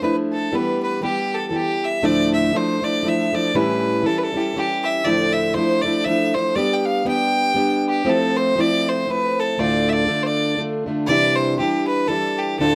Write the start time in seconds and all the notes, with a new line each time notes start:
0.01 F3 A3 D4 E4 B4
0.33 A4
0.52 E3 G3 B3 G4 B4
0.83 B4
1.01 E3 G3 B3 G4
1.35 A4
1.49 E3 G3 A4
1.53 B3 G4
1.84 E5
2.02 D2 A2 F3 A3 D4 E4 D5
2.34 E5
2.53 F3 A3 D4 E4
2.57 C5
2.81 F3 A3 D4 E4 D5
3.03 F3 A3 D4 E4
3.08 E5
3.33 F3 A3 D4 E4 D5
3.54 A2 E3 G3 C#4 E4 B4
4.03 E3 G3 C#4 E4 A4
4.18 B4
4.24 A4
4.32 E3 G3 C#4 E4
4.37 G4 A4
4.54 E3 G3 C#4 E4 G4
4.84 E5
5.04 D2 A2 F3 A3 D4 E4 D5
5.33 E5
5.54 F3 A3 D4 C5
5.58 E4
5.82 F3 A3 D5
5.86 D4 E4
6.05 F3 A3 D4 E5
6.09 E4
6.34 F3 A3 D4 E4 C5
6.55 G3 B3 D4 G4 D5
6.74 G5
6.85 F5
7.05 G3 B3 D4 G4 G5
7.55 G3 B3 D4 G4
7.89 G4
8.05 F3 A3 C4 E4
8.09 A4
8.37 C5
8.56 F3 A3 C4 E4
8.60 D5
8.89 C5
9.07 F3 A3 C4 E4 B4
9.40 A4
9.58 D2 A2 D3 A3 D4 F4 D5
9.89 D5 E5
10.07 D3 A3 D4 F4
10.23 C5 D5
10.57 D3 A3 D4 F4
10.86 D3 A3 D4 F4
11.07 C3 E3 G3 D5
11.11 D4 E4
11.36 C5
11.59 E3 G3 D4 E4 G4
11.87 B4
12.08 E3 G3 D4 E4 A4
12.38 G4
12.59 D2 A2 D3 A3 D4 F4 A4